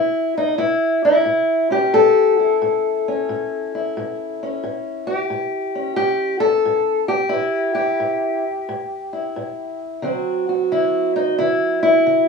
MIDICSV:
0, 0, Header, 1, 2, 480
1, 0, Start_track
1, 0, Tempo, 672646
1, 1396, Time_signature, 4, 2, 24, 8
1, 8764, End_track
2, 0, Start_track
2, 0, Title_t, "Steel-string acoustic guitar"
2, 0, Program_c, 0, 25
2, 0, Note_on_c, 0, 45, 64
2, 0, Note_on_c, 0, 64, 74
2, 265, Note_off_c, 0, 64, 0
2, 268, Note_on_c, 0, 63, 82
2, 403, Note_off_c, 0, 45, 0
2, 412, Note_off_c, 0, 63, 0
2, 415, Note_on_c, 0, 64, 85
2, 422, Note_on_c, 0, 45, 68
2, 740, Note_off_c, 0, 64, 0
2, 748, Note_on_c, 0, 64, 85
2, 877, Note_off_c, 0, 45, 0
2, 895, Note_on_c, 0, 45, 65
2, 1216, Note_on_c, 0, 61, 45
2, 1224, Note_off_c, 0, 64, 0
2, 1227, Note_on_c, 0, 67, 86
2, 1353, Note_off_c, 0, 45, 0
2, 1379, Note_on_c, 0, 45, 71
2, 1384, Note_on_c, 0, 69, 97
2, 1706, Note_off_c, 0, 67, 0
2, 1709, Note_on_c, 0, 64, 47
2, 1835, Note_off_c, 0, 45, 0
2, 1867, Note_on_c, 0, 45, 67
2, 2196, Note_off_c, 0, 61, 0
2, 2199, Note_on_c, 0, 61, 44
2, 2319, Note_off_c, 0, 45, 0
2, 2348, Note_on_c, 0, 45, 71
2, 2672, Note_off_c, 0, 64, 0
2, 2675, Note_on_c, 0, 64, 43
2, 2799, Note_off_c, 0, 45, 0
2, 2832, Note_on_c, 0, 45, 74
2, 3157, Note_off_c, 0, 61, 0
2, 3160, Note_on_c, 0, 61, 44
2, 3281, Note_off_c, 0, 45, 0
2, 3308, Note_off_c, 0, 69, 0
2, 3308, Note_on_c, 0, 45, 70
2, 3618, Note_on_c, 0, 67, 91
2, 3639, Note_off_c, 0, 61, 0
2, 3759, Note_off_c, 0, 45, 0
2, 3783, Note_on_c, 0, 45, 68
2, 4105, Note_on_c, 0, 61, 43
2, 4236, Note_off_c, 0, 45, 0
2, 4247, Note_off_c, 0, 67, 0
2, 4256, Note_on_c, 0, 67, 103
2, 4262, Note_on_c, 0, 45, 70
2, 4566, Note_off_c, 0, 67, 0
2, 4568, Note_on_c, 0, 69, 107
2, 4716, Note_off_c, 0, 45, 0
2, 4749, Note_on_c, 0, 45, 72
2, 5051, Note_off_c, 0, 69, 0
2, 5054, Note_on_c, 0, 67, 87
2, 5172, Note_off_c, 0, 64, 0
2, 5200, Note_off_c, 0, 45, 0
2, 5204, Note_on_c, 0, 64, 88
2, 5211, Note_off_c, 0, 61, 0
2, 5236, Note_on_c, 0, 45, 68
2, 5520, Note_off_c, 0, 67, 0
2, 5528, Note_on_c, 0, 67, 87
2, 5684, Note_off_c, 0, 45, 0
2, 5708, Note_on_c, 0, 45, 70
2, 6021, Note_off_c, 0, 64, 0
2, 6160, Note_off_c, 0, 45, 0
2, 6199, Note_on_c, 0, 45, 72
2, 6514, Note_on_c, 0, 64, 45
2, 6647, Note_off_c, 0, 45, 0
2, 6681, Note_on_c, 0, 45, 70
2, 6985, Note_off_c, 0, 67, 0
2, 7128, Note_off_c, 0, 45, 0
2, 7138, Note_off_c, 0, 64, 0
2, 7152, Note_on_c, 0, 50, 69
2, 7157, Note_on_c, 0, 54, 44
2, 7161, Note_on_c, 0, 60, 46
2, 7169, Note_on_c, 0, 66, 45
2, 7483, Note_off_c, 0, 66, 0
2, 7486, Note_on_c, 0, 66, 47
2, 7604, Note_off_c, 0, 50, 0
2, 7647, Note_on_c, 0, 50, 65
2, 7649, Note_on_c, 0, 64, 76
2, 7960, Note_off_c, 0, 64, 0
2, 7963, Note_on_c, 0, 63, 78
2, 8093, Note_off_c, 0, 50, 0
2, 8121, Note_off_c, 0, 63, 0
2, 8124, Note_on_c, 0, 64, 86
2, 8132, Note_on_c, 0, 50, 72
2, 8431, Note_off_c, 0, 64, 0
2, 8440, Note_on_c, 0, 64, 90
2, 8576, Note_off_c, 0, 50, 0
2, 8609, Note_on_c, 0, 50, 71
2, 8764, Note_off_c, 0, 50, 0
2, 8764, Note_off_c, 0, 54, 0
2, 8764, Note_off_c, 0, 60, 0
2, 8764, Note_off_c, 0, 64, 0
2, 8764, Note_off_c, 0, 66, 0
2, 8764, End_track
0, 0, End_of_file